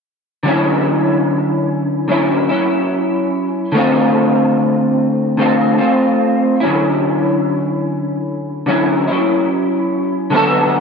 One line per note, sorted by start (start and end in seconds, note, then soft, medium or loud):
0.43 2.08 D3 medium
0.43 2.08 F#3 medium
0.43 2.09 C#4 medium
0.49 2.10 E4 medium
2.08 2.50 D3 soft
2.08 2.50 F#3 medium
2.08 2.50 C#4 medium
2.08 2.48 E4 medium
2.49 3.74 F#3 soft
2.49 3.74 C#4 soft
2.49 3.73 E4 soft
3.72 5.37 D3 medium
3.72 5.39 A3 medium
3.76 5.39 C4 medium
3.76 5.40 F4 medium
5.37 5.79 D3 medium
5.37 5.80 A3 medium
5.37 5.79 C4 medium
5.37 5.77 F4 medium
5.78 6.62 C4 soft
5.78 6.60 F4 medium
5.82 6.64 A3 soft
6.60 8.68 C#4 medium
6.60 8.67 E4 medium
6.64 8.66 D3 medium
6.64 8.68 F#3 medium
8.66 9.08 D3 medium
8.66 9.09 F#3 medium
8.66 9.09 C#4 medium
8.66 9.06 E4 medium
9.08 10.32 F#3 soft
9.08 10.32 C#4 soft
9.08 10.31 E4 medium
10.30 10.80 D3 medium
10.30 10.80 F#3 medium
10.30 10.80 B3 medium
10.35 10.80 F#4 medium
10.35 10.80 A4 medium